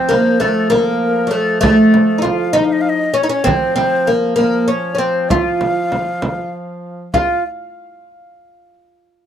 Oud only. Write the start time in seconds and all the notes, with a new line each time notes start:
Already playing: C4
0.09 A#3
0.40 A3
0.70 A#3
1.27 F#3 A3
1.61 A3
2.18 D#4 F4
2.53 D#4
3.14 C#4
3.23 D#4
3.29 C#4
3.44 C4
3.76 C4
4.07 A#3
4.36 A#3
4.68 C#4
4.95 C4 C#4
5.31 F4
7.14 F4